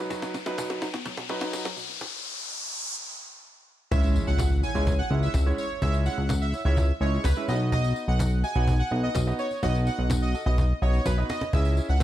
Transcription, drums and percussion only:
0.10 cajon bass, cajon slap, tambourine
0.22 cajon slap, tambourine
0.34 cajon slap, tambourine
0.46 cajon slap, tambourine
0.58 cajon bass, cajon slap, tambourine
0.70 cajon slap
0.82 cajon slap, tambourine
0.94 cajon slap, tambourine
1.06 cajon bass, cajon slap, tambourine
1.17 cajon slap
1.29 cajon slap
1.41 cajon slap, tambourine
1.53 cajon slap, tambourine
1.65 cajon slap
1.77 cajon slap, tambourine
1.89 cajon slap, tambourine
2.01 cajon bass, cajon slap
3.92 cajon bass, tambourine
4.04 tambourine
4.16 cajon slap, tambourine
4.27 cajon slap, tambourine
4.39 cajon bass, cajon slap, tambourine
4.51 cajon slap
4.63 cajon slap, tambourine
4.75 tambourine
4.87 cajon bass, tambourine
4.99 cajon slap
5.23 tambourine
5.34 cajon bass, cajon slap, tambourine
5.58 cajon slap, tambourine
5.70 cajon slap
5.82 cajon bass, tambourine
5.94 tambourine
6.06 tambourine
6.18 cajon slap
6.29 cajon bass, cajon slap, tambourine
6.53 cajon slap, tambourine
6.77 cajon bass, tambourine
7.01 cajon slap
7.13 cajon slap
7.24 cajon bass, cajon slap, tambourine
7.37 cajon slap
7.48 tambourine
7.60 cajon slap
7.72 cajon bass, tambourine
7.84 tambourine
7.96 cajon slap, tambourine
8.08 cajon slap
8.19 cajon bass, cajon slap, tambourine
8.32 cajon slap
8.44 cajon slap, tambourine
8.67 cajon bass, tambourine
9.04 cajon slap
9.15 cajon bass, cajon slap, tambourine
9.39 cajon slap, tambourine
9.51 cajon slap, tambourine
9.63 cajon bass, tambourine
9.75 tambourine
9.87 tambourine
10.10 cajon bass, cajon slap, tambourine
10.34 tambourine
10.46 cajon slap, tambourine
10.58 cajon bass, tambourine
10.82 cajon slap
10.94 cajon slap, tambourine
11.06 cajon bass, cajon slap, tambourine
11.18 cajon slap
11.29 cajon slap, tambourine
11.41 cajon slap
11.53 cajon bass, tambourine
11.65 tambourine
11.77 tambourine
11.89 cajon slap, tambourine

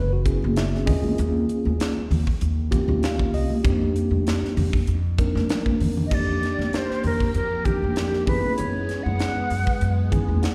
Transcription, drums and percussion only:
0.26 kick, closed hi-hat
0.42 high conga
0.56 snare, closed hi-hat
0.75 snare
0.87 kick, open hi-hat, low conga
1.04 high conga
1.18 closed hi-hat
1.49 closed hi-hat
1.65 high conga
1.80 snare, closed hi-hat
2.10 open hi-hat, low conga
2.27 kick
2.41 closed hi-hat
2.71 kick, closed hi-hat, low conga
2.88 high conga
3.03 snare, closed hi-hat
3.19 kick
3.34 open hi-hat
3.50 high conga
3.65 kick, closed hi-hat
3.81 high conga
3.96 closed hi-hat
4.12 high conga
4.27 snare, closed hi-hat
4.45 snare
4.57 open hi-hat, low conga
4.73 kick
4.87 closed hi-hat
5.18 kick, closed hi-hat
5.35 snare, high conga
5.49 snare, closed hi-hat, high conga
5.66 kick, high conga
5.80 open hi-hat, low conga
5.97 low conga
6.11 kick, crash
6.43 snare, closed hi-hat
6.59 snare, high conga
6.73 snare, closed hi-hat
6.91 snare
7.04 open hi-hat, low conga
7.20 kick
7.34 closed hi-hat
7.65 kick, closed hi-hat, low conga
7.82 high conga
7.96 snare, closed hi-hat
8.13 snare
8.27 kick, open hi-hat, low conga
8.45 high conga
8.58 closed hi-hat
8.89 snare, closed hi-hat
9.06 high conga
9.19 snare, closed hi-hat
9.50 open hi-hat
9.67 kick
9.81 closed hi-hat
10.12 kick, closed hi-hat, low conga
10.30 high conga
10.43 snare, closed hi-hat

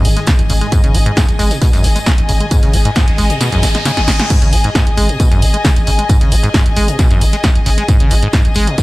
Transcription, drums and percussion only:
0.05 open hi-hat, tambourine
0.17 snare, closed hi-hat
0.27 kick, snare, closed hi-hat, tambourine
0.39 closed hi-hat
0.49 open hi-hat, tambourine
0.61 snare, closed hi-hat
0.72 kick, closed hi-hat, tambourine
0.84 closed hi-hat
0.95 open hi-hat, tambourine
1.06 closed hi-hat
1.17 kick, snare, closed hi-hat, tambourine
1.29 closed hi-hat
1.39 snare, open hi-hat, tambourine
1.51 snare, closed hi-hat, tambourine
1.61 kick, snare, closed hi-hat, tambourine
1.73 snare, closed hi-hat, tambourine
1.84 snare, open hi-hat, tambourine
1.95 snare, closed hi-hat, tambourine
2.06 kick, snare, closed hi-hat, tambourine
2.18 closed hi-hat
2.29 open hi-hat, tambourine
2.40 closed hi-hat
2.51 kick, closed hi-hat, tambourine
2.63 snare, closed hi-hat
2.73 open hi-hat, tambourine
2.85 closed hi-hat
2.96 kick, snare, closed hi-hat, tambourine
3.08 closed hi-hat
3.18 open hi-hat, tambourine
3.30 closed hi-hat
3.41 snare, closed hi-hat, tambourine
3.52 closed hi-hat
3.63 snare, open hi-hat, tambourine
3.75 snare, closed hi-hat
3.85 snare, closed hi-hat, tambourine
3.97 snare, closed hi-hat
4.08 snare, open hi-hat, tambourine
4.20 snare, closed hi-hat
4.30 kick, closed hi-hat, crash, tambourine
4.42 closed hi-hat
4.53 open hi-hat, tambourine
4.64 closed hi-hat
4.75 kick, snare, closed hi-hat, tambourine
4.87 closed hi-hat
4.97 open hi-hat, tambourine
5.09 closed hi-hat
5.20 kick, closed hi-hat, tambourine
5.32 closed hi-hat
5.42 open hi-hat, tambourine
5.54 closed hi-hat
5.64 kick, snare, closed hi-hat, tambourine
5.76 closed hi-hat
5.87 open hi-hat, tambourine
5.99 closed hi-hat
6.09 kick, closed hi-hat, tambourine
6.20 snare, closed hi-hat
6.32 open hi-hat, tambourine
6.44 closed hi-hat
6.54 kick, snare, closed hi-hat, tambourine
6.66 closed hi-hat
6.76 open hi-hat, tambourine
6.88 closed hi-hat
6.99 kick, snare, closed hi-hat, tambourine
7.11 closed hi-hat
7.21 open hi-hat, tambourine
7.33 snare, closed hi-hat
7.43 kick, snare, closed hi-hat, tambourine
7.55 closed hi-hat
7.66 open hi-hat, tambourine
7.78 snare, closed hi-hat
7.88 kick, closed hi-hat, tambourine
8.00 closed hi-hat
8.11 open hi-hat, tambourine
8.23 closed hi-hat
8.33 kick, snare, closed hi-hat, tambourine
8.45 closed hi-hat
8.55 open hi-hat, tambourine
8.67 closed hi-hat
8.78 kick, closed hi-hat, tambourine

